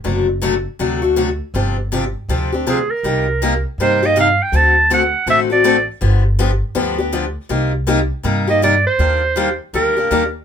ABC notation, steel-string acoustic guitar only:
X:1
M:4/4
L:1/16
Q:"Swing" 1/4=161
K:Cm
V:1 name="Steel-string acoustic guitar"
[C,^F,=A,D^F]2 z2 [C,F,A,DF] z3 [C,F,A,DF]2 [A,DF]2 [C,F,A,DF] z3 | [C,F,CDG]2 z2 [C,F,CDG] z3 [C,F,CDG]2 [CDG]2 [C,F,CDG] z3 | [C,G,B,EG]2 z2 [C,G,B,EG] z3 [C,G,B,EG]2 [B,EG]2 [C,G,B,EG] z3 | [D,=A,C^F=A]2 z2 [D,A,CFA] z3 [D,A,CFA]2 [CFA]2 [D,A,CFA] z3 |
[D,F,=B,DG]2 z2 [D,F,B,DG] z3 [D,F,B,DG]2 [B,DG]2 [D,F,B,DG] z3 | [C,G,B,EG]2 z2 [C,G,B,EG] z3 [C,G,B,EG]2 [B,EG]2 [C,G,B,EG] z3 | [E,G,B,DG]2 z2 [E,G,B,DG] z3 [E,G,B,DG]2 [B,DG]2 [E,G,B,DG] z3 |]